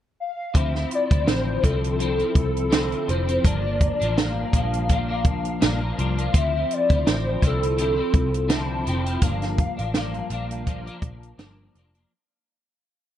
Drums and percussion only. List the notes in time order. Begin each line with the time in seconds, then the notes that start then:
0.55 kick, closed hi-hat
0.75 snare
0.91 closed hi-hat
1.11 kick, closed hi-hat
1.27 snare, closed hi-hat
1.64 kick, closed hi-hat
1.84 closed hi-hat
2.00 closed hi-hat
2.19 closed hi-hat
2.35 kick, closed hi-hat
2.57 closed hi-hat
2.72 snare, closed hi-hat
2.92 closed hi-hat
3.09 closed hi-hat
3.28 closed hi-hat
3.45 kick, closed hi-hat
3.81 kick, closed hi-hat
4.01 closed hi-hat
4.18 snare, closed hi-hat
4.53 kick, closed hi-hat
4.74 closed hi-hat
4.89 kick, closed hi-hat
5.24 kick, closed hi-hat
5.45 closed hi-hat
5.62 snare, closed hi-hat
5.99 closed hi-hat
6.18 closed hi-hat
6.34 kick, closed hi-hat
6.71 closed hi-hat
6.90 kick, closed hi-hat
7.07 snare, closed hi-hat
7.42 kick, closed hi-hat
7.63 closed hi-hat
7.78 closed hi-hat
8.14 kick, closed hi-hat
8.34 closed hi-hat
8.50 snare, closed hi-hat
8.87 closed hi-hat
9.06 closed hi-hat
9.21 kick, closed hi-hat
9.42 snare, closed hi-hat
9.58 kick, closed hi-hat
9.79 closed hi-hat
9.94 snare, closed hi-hat
10.14 closed hi-hat
10.30 closed hi-hat
10.51 closed hi-hat
10.67 kick, closed hi-hat
10.87 closed hi-hat
11.02 kick, closed hi-hat
11.23 closed hi-hat
11.39 snare, closed hi-hat
11.75 closed hi-hat
11.95 closed hi-hat